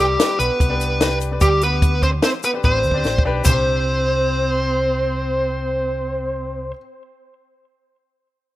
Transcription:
Already playing: C2 D4 G4 B4
0.00 G3 G4
0.19 D4 G4 B4, snare, closed hi-hat, shaker
0.39 B1 B3 B4, closed hi-hat, shaker
0.60 C2, kick, closed hi-hat
0.70 D4 G4 B4
0.80 closed hi-hat, shaker
1.01 D4 G4 B4, snare, closed hi-hat
1.20 closed hi-hat, shaker
1.31 D4 G4 B4
1.41 D2 G3 G4, kick, closed hi-hat, shaker
1.61 B3 B4, closed hi-hat, shaker
1.82 kick, closed hi-hat
2.02 C4 C5, kick, closed hi-hat, shaker
2.22 C4 C5, snare, closed hi-hat
2.43 B3 B4, closed hi-hat, shaker
2.53 D4 G4 B4
2.64 A1 C4 C5, kick, shaker
2.83 D2, shaker
2.91 D4 G4 D5, kick
3.04 A1, snare, shaker
3.18 kick
3.25 B1 D4 G4 B4
3.43 C2 C4 D4 G4 C5, kick, floor tom, splash, shaker
3.50 C5

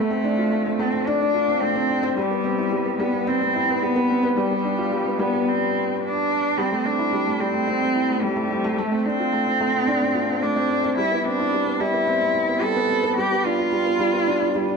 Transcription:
Already playing: A3
0.10 C4
0.24 D4
0.38 F4
0.52 A3
0.66 C4
0.79 A3 C4
0.94 C4
1.06 D4
1.21 D4
1.34 F4
1.48 C4
1.61 A3 C4
1.76 C4
1.89 D4
2.03 C4
2.17 G3
2.31 B3
2.44 C4
2.58 E4
2.72 G3
2.86 B3
3.00 G3 B3
3.13 B3
3.27 C4
3.41 C4
3.55 E4
3.68 B3
3.82 G3 B3
3.96 B3
4.09 C4
4.23 B3
4.37 G3
4.51 B3
4.64 D4
4.78 F4
4.92 G3
5.05 B3
5.19 G3 B3
5.33 B3
5.48 C4
5.96 C4
6.04 D4
6.58 G3 C4
6.72 A3
6.85 C4 D4
6.99 E4
7.13 G3
7.27 A3
7.40 G3 C4
7.54 A3
7.68 C4
7.82 C4
7.95 E4
8.09 A3
8.23 G3
8.36 A3
8.51 C4
8.64 A3
8.78 A3
8.92 C4
9.05 C4 D4
9.20 F4
9.33 A3
9.47 C4
9.61 A3
9.74 C4
9.88 D4
10.01 D4
10.15 F4
10.29 C4
10.43 A3 D4
10.56 C4
10.70 D4
10.84 C4
10.97 G3 E4
11.11 B3
11.18 E4
11.25 C4 D4
11.39 E4
11.53 G3
11.66 B3
11.80 G3 E4
11.94 B3
12.07 C4
12.21 C4
12.35 E4
12.49 B3
12.62 G3 A4
12.76 B3
12.90 C4
13.03 B3
13.17 G3 G4
13.32 B3
13.45 D4 F4
13.59 F4
13.72 G3
13.86 B3
14.00 G3
14.13 B3
14.27 D4
14.41 D4
14.55 G3
14.69 D4

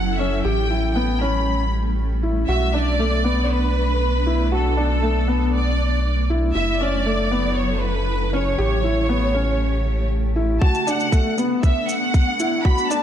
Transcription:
Already playing: F#1 F#3 C#4 E4 A4 F#5
0.18 C#4 E5
0.44 A1 G3 A3 G4 G5
0.70 E4
0.94 B3 G5
1.21 C#4 B5
2.23 E4
2.48 B1 B3 D4 F#4 E5
2.74 D4 D5
2.99 A3
3.24 B3
3.51 B4
4.26 E4
4.52 F#4 A4
4.77 D4
5.02 A3
5.28 B3
5.55 D5
6.30 E4
6.55 F#1 C#3 F#3 E4 A4 E5
6.80 C#4 D5
7.06 A3
7.32 B3
7.56 C#5
7.81 B4
8.32 C#4 C#5
8.58 A1 A3 G4
8.84 E4
9.09 B3
9.34 C#4
10.36 E4
10.61 B1 A3 B3 D4 F#4 A5, kick
10.75 shaker
10.87 D4 F#5, shaker
11.00 shaker
11.12 A3, kick, shaker
11.38 B3, shaker
11.63 E5, kick, shaker
11.88 F#5, shaker
12.14 kick, shaker
12.39 E4, shaker
12.64 F#4 B5, kick
12.78 shaker
12.90 D4 A5, shaker

